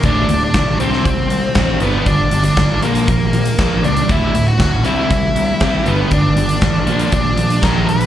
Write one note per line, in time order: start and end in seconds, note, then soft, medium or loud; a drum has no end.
0.03 0.20 D1 medium
0.03 0.27 D2 medium
0.03 0.28 A2 medium
0.03 0.28 D3 medium
0.03 0.43 D4 medium
0.03 kick loud
0.03 closed hi-hat medium
0.28 0.45 D1 medium
0.28 0.52 D2 medium
0.28 0.52 A2 medium
0.28 closed hi-hat medium
0.44 0.80 D4 medium
0.54 0.71 B1 medium
0.54 0.78 D2 medium
0.54 0.78 A2 medium
0.54 kick medium
0.54 snare loud
0.54 closed hi-hat medium
0.79 0.96 C2 medium
0.79 1.04 C3 medium
0.79 1.04 G3 medium
0.79 1.81 C4 medium
0.79 1.04 C4 medium
0.79 closed hi-hat medium
0.93 snare soft
1.05 1.22 C2 medium
1.05 1.28 C3 medium
1.05 1.28 G3 medium
1.05 kick loud
1.05 closed hi-hat medium
1.30 1.46 C2 medium
1.30 1.54 C3 medium
1.30 1.54 G3 medium
1.30 closed hi-hat medium
1.55 1.72 A1 medium
1.55 1.80 C3 medium
1.55 1.80 G3 medium
1.55 1.80 C4 loud
1.55 kick loud
1.55 snare loud
1.55 closed hi-hat medium
1.80 1.97 G1 medium
1.80 2.05 G2 medium
1.80 2.06 D3 loud
1.80 2.06 G3 medium
1.80 2.06 B3 medium
1.80 closed hi-hat medium
2.06 2.22 G1 medium
2.06 2.30 G2 medium
2.06 2.30 D3 medium
2.06 2.44 D4 medium
2.06 kick loud
2.06 closed hi-hat medium
2.31 2.49 G1 medium
2.31 2.55 G2 medium
2.31 2.55 D3 medium
2.31 closed hi-hat medium
2.44 2.82 D4 loud
2.44 closed hi-hat medium
2.57 2.73 G1 medium
2.57 2.80 G2 medium
2.57 2.81 D3 medium
2.57 kick loud
2.57 snare loud
2.57 closed hi-hat medium
2.82 2.99 A#1 medium
2.82 3.06 A#2 medium
2.82 3.07 F3 medium
2.82 3.84 A#3 medium
2.82 3.07 A#3 medium
2.82 closed hi-hat medium
2.95 snare soft
2.95 closed hi-hat medium
3.08 3.24 A#1 medium
3.08 3.31 A#2 medium
3.08 3.31 F3 medium
3.08 kick loud
3.08 closed hi-hat medium
3.33 3.49 A#1 medium
3.33 3.56 A#2 medium
3.33 3.56 F3 medium
3.33 closed hi-hat medium
3.46 closed hi-hat medium
3.58 3.75 A#1 medium
3.58 3.82 A#2 medium
3.58 3.82 F3 medium
3.58 3.83 A#3 medium
3.58 kick loud
3.58 snare loud
3.58 closed hi-hat medium
3.83 4.00 C#2 medium
3.83 4.06 A#2 medium
3.83 4.07 F3 medium
3.83 4.10 D4 medium
3.83 closed hi-hat medium
3.97 closed hi-hat medium
4.09 4.26 D1 loud
4.09 4.33 D2 medium
4.09 4.33 A2 loud
4.09 4.33 D3 loud
4.09 4.48 E4 medium
4.09 kick medium
4.09 closed hi-hat medium
4.34 4.50 D1 medium
4.34 4.57 D2 medium
4.34 4.57 A2 medium
4.34 closed hi-hat medium
4.48 4.83 F#4 loud
4.59 4.76 D1 medium
4.59 4.82 D2 medium
4.59 4.82 A2 medium
4.59 kick loud
4.59 snare loud
4.59 closed hi-hat medium
4.85 5.01 C2 medium
4.85 5.09 C3 medium
4.85 5.09 G3 medium
4.85 5.09 C4 medium
4.85 5.89 E4 loud
4.85 closed hi-hat medium
5.10 5.27 C2 medium
5.10 5.33 C3 medium
5.10 5.33 G3 medium
5.10 kick loud
5.10 closed hi-hat medium
5.35 5.51 C2 medium
5.35 5.58 C3 medium
5.35 5.59 G3 medium
5.35 closed hi-hat medium
5.60 5.77 C2 medium
5.60 5.85 C3 medium
5.60 5.85 G3 medium
5.60 5.85 C4 medium
5.60 kick loud
5.60 snare loud
5.60 closed hi-hat medium
5.86 6.02 G1 medium
5.86 6.10 G2 medium
5.86 6.10 D3 loud
5.86 6.10 G3 medium
5.86 6.13 B3 medium
5.86 closed hi-hat medium
6.11 6.27 G1 medium
6.11 6.34 G2 medium
6.11 6.34 D3 medium
6.11 7.12 D4 medium
6.11 kick loud
6.11 closed hi-hat medium
6.37 6.53 G1 medium
6.37 6.59 G2 medium
6.37 6.59 D3 medium
6.37 closed hi-hat medium
6.49 closed hi-hat medium
6.61 6.78 A1 medium
6.61 6.84 G2 medium
6.61 6.85 D3 medium
6.61 kick loud
6.61 snare loud
6.61 closed hi-hat medium
6.86 7.02 A#1 medium
6.86 7.10 A#2 medium
6.86 7.10 F3 medium
6.86 7.11 A#3 medium
6.86 closed hi-hat medium
6.99 closed hi-hat medium
7.11 7.29 A#1 medium
7.11 7.34 A#2 medium
7.11 7.35 F3 medium
7.11 7.84 D4 medium
7.11 kick loud
7.11 closed hi-hat medium
7.36 7.53 A#1 medium
7.36 7.59 A#2 medium
7.36 7.60 F3 medium
7.36 closed hi-hat medium
7.50 closed hi-hat medium
7.62 7.79 A#1 medium
7.62 7.86 A#2 medium
7.62 7.86 F3 medium
7.62 7.86 A#3 medium
7.62 7.89 A#4 medium
7.62 kick loud
7.62 snare loud
7.62 closed hi-hat medium
7.86 8.03 A#1 medium
7.86 8.06 A#2 medium
7.86 8.06 F3 medium
7.86 8.06 B4 medium
7.86 closed hi-hat medium
8.01 closed hi-hat medium